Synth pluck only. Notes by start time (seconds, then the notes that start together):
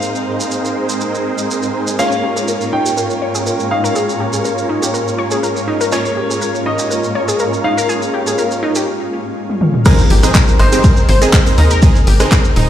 1.99 G#4
2.23 G4
2.36 G#4
2.48 A#4
2.73 D#4
2.86 G4
2.97 A#4
3.22 C#5
3.35 G#4
3.46 A#4
3.71 D#4
3.84 A#4
3.96 G#4
4.20 G4
4.33 G#4
4.45 A#4
4.69 D#4
4.82 G4
4.94 A#4
5.18 C#5
5.32 G#4
5.43 A#4
5.68 D#4
5.81 A#4
5.92 G#4
6.17 G4
6.30 G#4
6.41 A#4
6.66 D#4
6.79 G4
6.91 A#4
7.15 C#5
7.28 G#4
7.40 A#4
7.64 D#4
7.77 A#4
7.89 G#4
8.14 G4
8.27 G#4
8.38 A#4
8.63 D#4
8.76 G4
9.86 G#4
10.10 G4
10.23 G#4
10.35 A#4
10.60 D#4
10.73 G4
10.84 A#4
11.09 C5
11.22 G#4
11.58 D#4
11.71 A#4
11.82 G#4
12.07 G4
12.20 G#4
12.32 A#4
12.56 D#4